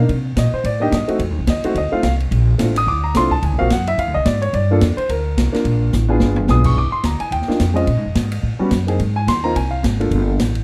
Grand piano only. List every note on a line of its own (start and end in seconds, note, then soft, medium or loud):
0.39 0.54 D#5 medium
0.54 0.64 C5 medium
0.66 0.81 D5 medium
0.80 0.91 A#3 medium
0.80 0.91 D4 medium
0.80 0.91 D#4 medium
0.80 0.92 G4 medium
0.80 0.92 D#5 medium
0.95 1.09 D#5 medium
1.08 1.19 A3 medium
1.08 1.19 C4 medium
1.08 1.19 D#4 medium
1.08 1.19 F#4 medium
1.50 1.65 D#5 medium
1.64 1.75 A3 medium
1.64 1.75 C4 medium
1.64 1.75 D#4 medium
1.64 1.75 F#4 medium
1.64 1.76 C5 medium
1.78 1.93 D#5 medium
1.92 2.02 A3 medium
1.92 2.02 C4 medium
1.92 2.02 D#4 medium
1.92 2.03 F4 medium
1.92 2.02 F5 medium
2.04 2.13 F5 loud
2.58 2.73 A3 medium
2.58 2.74 C4 medium
2.58 2.74 D4 soft
2.58 2.74 F4 medium
2.78 2.88 D#6 loud
2.88 3.03 D6 loud
3.04 3.14 A#5 loud
3.16 3.30 A3 medium
3.16 3.30 C4 medium
3.16 3.30 D4 medium
3.16 3.30 F4 medium
3.16 3.32 C6 loud
3.31 3.42 A5 loud
3.45 3.60 G#5 medium
3.58 3.69 A#3 medium
3.58 3.69 C4 medium
3.58 3.69 F4 medium
3.58 3.69 F#4 medium
3.58 3.70 F5 loud
3.72 3.87 F#5 medium
3.88 3.98 E5 loud
3.99 4.14 F5 loud
4.14 4.25 D#5 loud
4.26 4.41 D5 medium
4.42 4.53 C#5 medium
4.54 4.95 D5 medium
4.71 4.81 A#3 medium
4.71 4.81 D4 medium
4.71 4.81 F4 medium
4.71 4.81 A4 medium
4.97 5.09 C5 loud
5.10 5.53 A#4 medium
5.53 5.90 A#3 medium
5.53 5.90 D4 medium
5.53 5.90 F4 medium
5.53 5.91 A#4 medium
6.08 6.46 B3 medium
6.08 6.46 D4 medium
6.08 6.46 F4 medium
6.08 6.46 G#4 medium
6.48 6.76 B3 medium
6.48 6.77 D4 medium
6.48 6.77 F4 medium
6.48 6.77 G#4 medium
6.48 6.65 D#6 loud
6.66 6.76 C#6 loud
6.78 6.93 D6 medium
6.92 7.04 C6 loud
7.05 7.20 A#5 medium
7.20 7.31 G#5 loud
7.32 7.73 G5 medium
7.48 7.59 A#3 medium
7.48 7.59 D4 medium
7.48 7.59 D#4 medium
7.48 7.59 F4 medium
7.74 7.85 G#3 medium
7.74 7.86 C4 medium
7.74 7.86 C#4 medium
7.74 7.86 F4 medium
7.74 8.39 D#5 medium
8.59 8.70 G3 medium
8.59 8.70 B3 medium
8.59 8.70 C#4 medium
8.59 8.70 F#4 medium
8.87 8.98 A#3 medium
8.87 8.98 C4 medium
8.87 8.98 D#4 medium
8.87 8.98 G#4 medium
9.16 9.27 G#5 loud
9.29 9.44 C6 loud
9.44 9.54 A#3 medium
9.44 9.54 C4 medium
9.44 9.54 D#4 medium
9.44 9.55 F4 medium
9.44 9.55 A#5 loud
9.56 9.71 G#5 medium
9.71 9.82 F5 medium
10.00 10.36 A#3 medium
10.00 10.36 D4 medium
10.00 10.37 F4 medium
10.00 10.37 A4 medium